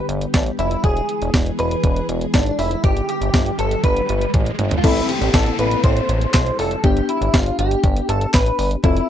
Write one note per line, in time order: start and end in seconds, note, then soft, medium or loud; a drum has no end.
0.00 0.82 D3 medium
0.00 0.80 G3 medium
0.00 4.80 B3 medium
0.00 0.82 G4 medium
0.09 0.26 G1 loud
0.09 closed hi-hat medium
0.21 closed hi-hat medium
0.34 0.51 A1 loud
0.34 0.41 D4 medium
0.34 kick loud
0.34 snare loud
0.34 closed hi-hat medium
0.46 closed hi-hat soft
0.59 0.76 F1 loud
0.59 0.83 E4 medium
0.59 closed hi-hat medium
0.71 closed hi-hat medium
0.84 1.01 E1 loud
0.84 2.82 E3 medium
0.84 2.82 G#3 medium
0.84 1.30 G#4 loud
0.84 2.82 G#4 medium
0.84 kick loud
0.84 closed hi-hat medium
0.84 riser medium
0.97 closed hi-hat soft
1.09 closed hi-hat medium
1.21 1.30 E1 loud
1.21 closed hi-hat medium
1.34 1.51 E1 loud
1.34 kick loud
1.34 snare loud
1.34 closed hi-hat medium
1.46 closed hi-hat medium
1.59 1.76 E1 medium
1.59 2.05 B4 loud
1.59 closed hi-hat medium
1.71 closed hi-hat medium
1.84 2.01 E1 loud
1.84 kick loud
1.84 closed hi-hat medium
1.96 closed hi-hat soft
2.09 2.26 E1 loud
2.09 closed hi-hat medium
2.21 closed hi-hat medium
2.34 2.51 G#1 loud
2.34 2.60 D4 medium
2.34 kick loud
2.34 snare loud
2.34 closed hi-hat medium
2.46 closed hi-hat soft
2.59 2.76 F1 medium
2.59 2.83 E4 medium
2.59 open hi-hat medium
2.71 closed hi-hat medium
2.84 3.01 G1 loud
2.84 4.82 D3 medium
2.84 4.82 G3 medium
2.84 3.08 G4 loud
2.84 4.82 G4 medium
2.84 kick loud
2.84 closed hi-hat medium
2.97 closed hi-hat soft
3.09 3.55 G4 loud
3.09 closed hi-hat medium
3.21 3.30 G1 loud
3.21 closed hi-hat medium
3.34 3.51 G1 loud
3.34 kick loud
3.34 snare loud
3.34 closed hi-hat medium
3.46 closed hi-hat medium
3.59 3.76 G1 loud
3.59 3.83 A4 loud
3.59 closed hi-hat medium
3.71 closed hi-hat medium
3.84 4.01 G1 loud
3.84 4.30 B4 loud
3.84 kick loud
3.84 closed hi-hat medium
3.97 closed hi-hat soft
4.09 4.26 G1 loud
4.09 closed hi-hat medium
4.21 closed hi-hat medium
4.34 4.51 A1 loud
4.34 kick loud
4.34 closed hi-hat medium
4.34 high tom medium
4.46 closed hi-hat soft
4.59 4.76 G1 medium
4.59 closed hi-hat medium
4.59 mid tom medium
4.71 closed hi-hat medium
4.71 floor tom medium
4.78 4.84 F4 medium
4.84 5.01 A1 loud
4.84 6.80 C4 medium
4.84 6.80 E4 medium
4.84 5.10 E4 medium
4.84 6.80 A4 medium
4.84 kick loud
4.84 closed hi-hat medium
4.84 crash loud
4.84 downlifter medium
4.97 closed hi-hat soft
5.09 5.35 G4 medium
5.09 closed hi-hat medium
5.21 5.30 A1 medium
5.21 closed hi-hat medium
5.34 5.51 A1 loud
5.34 5.57 A4 medium
5.34 kick loud
5.34 snare loud
5.34 closed hi-hat medium
5.46 closed hi-hat medium
5.59 5.76 A1 loud
5.59 5.84 B4 medium
5.59 closed hi-hat medium
5.71 closed hi-hat medium
5.84 6.01 A1 loud
5.84 6.30 C5 loud
5.84 kick loud
5.84 closed hi-hat medium
5.97 closed hi-hat medium
6.09 6.26 A1 loud
6.09 closed hi-hat medium
6.21 closed hi-hat medium
6.34 6.51 B1 medium
6.34 6.58 C5 medium
6.34 kick loud
6.34 snare loud
6.34 clap medium
6.34 closed hi-hat medium
6.46 closed hi-hat medium
6.59 6.76 F1 loud
6.59 6.85 A4 medium
6.59 open hi-hat medium
6.71 closed hi-hat medium
6.84 7.01 G1 loud
6.84 8.80 B3 medium
6.84 8.80 D4 medium
6.84 8.80 G4 medium
6.84 7.10 G4 medium
6.84 kick loud
6.84 closed hi-hat medium
6.97 closed hi-hat soft
7.09 7.35 E4 medium
7.09 closed hi-hat medium
7.21 7.30 G1 loud
7.21 closed hi-hat medium
7.34 7.51 G1 loud
7.34 7.59 F4 medium
7.34 kick loud
7.34 snare loud
7.34 closed hi-hat medium
7.46 closed hi-hat medium
7.59 7.76 G1 loud
7.59 8.10 G4 medium
7.59 closed hi-hat medium
7.71 closed hi-hat medium
7.84 8.01 G1 loud
7.84 kick loud
7.84 closed hi-hat medium
7.97 closed hi-hat medium
8.09 8.26 G1 loud
8.09 8.33 A4 medium
8.09 closed hi-hat medium
8.21 closed hi-hat medium
8.34 8.51 A1 loud
8.34 8.69 B4 loud
8.34 kick loud
8.34 snare loud
8.34 clap loud
8.34 closed hi-hat medium
8.46 closed hi-hat medium
8.59 8.76 G1 medium
8.59 open hi-hat medium
8.71 closed hi-hat medium
8.84 9.01 F1 loud
8.84 9.09 C4 medium
8.84 9.09 E4 loud
8.84 9.09 F4 medium
8.84 9.09 A4 medium
8.84 kick loud
8.84 closed hi-hat medium
8.97 closed hi-hat soft